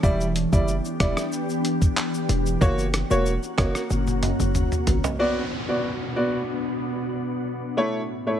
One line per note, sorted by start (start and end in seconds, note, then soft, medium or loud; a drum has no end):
0.00 0.46 E1 loud
0.00 2.57 E3 medium
0.00 0.25 G3 loud
0.00 2.59 B3 medium
0.00 2.59 D4 medium
0.00 0.25 E4 medium
0.00 2.59 G4 loud
0.00 0.25 D5 loud
0.00 kick loud
0.00 shaker medium
0.20 shaker soft
0.20 shaker medium
0.36 closed hi-hat medium
0.36 shaker medium
0.52 0.80 F#1 loud
0.52 0.73 G3 medium
0.52 0.73 E4 medium
0.52 0.73 D5 medium
0.52 kick medium
0.52 shaker medium
0.68 shaker medium
0.85 shaker medium
0.85 shaker soft
1.00 1.15 E1 medium
1.00 1.21 G3 medium
1.00 1.22 E4 medium
1.00 1.22 D5 medium
1.00 kick medium
1.00 cross-stick loud
1.00 closed hi-hat medium
1.00 shaker medium
1.17 cross-stick medium
1.17 shaker medium
1.32 shaker medium
1.49 shaker medium
1.49 shaker soft
1.65 closed hi-hat medium
1.65 shaker medium
1.82 kick loud
1.82 shaker medium
1.97 clap medium
1.97 shaker medium
2.14 shaker medium
2.29 2.57 E1 loud
2.29 closed hi-hat medium
2.29 shaker medium
2.46 shaker medium
2.61 3.04 F#1 loud
2.61 2.83 A#3 loud
2.61 5.17 A#3 medium
2.61 5.17 C#4 medium
2.61 2.83 F#4 medium
2.61 5.17 F#4 medium
2.61 2.83 C#5 loud
2.61 kick loud
2.61 shaker medium
2.78 shaker soft
2.78 shaker medium
2.93 cross-stick loud
2.93 closed hi-hat medium
2.93 shaker medium
3.10 3.38 E1 loud
3.10 3.31 A#3 medium
3.10 3.31 F#4 medium
3.10 3.31 C#5 medium
3.10 shaker medium
3.26 shaker medium
3.43 shaker medium
3.43 shaker soft
3.58 3.73 F#1 medium
3.58 3.79 A#3 medium
3.58 3.80 F#4 medium
3.58 3.80 C#5 medium
3.58 kick medium
3.58 cross-stick loud
3.58 closed hi-hat medium
3.58 high timbale medium
3.58 shaker medium
3.75 cross-stick medium
3.75 shaker medium
3.90 4.33 F#1 loud
3.90 high tom medium
3.90 shaker medium
4.07 high tom medium
4.07 shaker medium
4.23 closed hi-hat medium
4.23 mid tom medium
4.23 high timbale medium
4.23 shaker medium
4.40 4.67 F#1 medium
4.40 mid tom medium
4.40 shaker medium
4.55 mid tom loud
4.55 shaker medium
4.72 mid tom medium
4.72 shaker medium
4.87 5.02 G1 loud
4.87 closed hi-hat medium
4.87 floor tom loud
4.87 shaker medium
5.04 floor tom loud
5.04 high timbale medium
5.04 shaker medium
5.19 7.75 B2 medium
5.19 5.41 B3 medium
5.19 7.75 B3 medium
5.19 7.75 D4 medium
5.19 5.41 F#4 medium
5.19 7.75 F#4 medium
5.19 5.41 D5 loud
5.19 downlifter medium
5.68 5.89 B3 medium
5.68 5.89 F#4 medium
5.68 5.89 D5 medium
6.16 6.38 B3 medium
6.16 6.38 F#4 medium
6.16 6.38 D5 medium
7.77 8.40 A2 medium
7.77 7.99 A3 medium
7.77 8.40 A3 medium
7.77 8.40 C#4 medium
7.77 7.99 E4 medium
7.77 8.40 E4 medium
7.77 7.99 C#5 loud
8.27 8.40 A3 medium
8.27 8.40 E4 medium
8.27 8.40 C#5 medium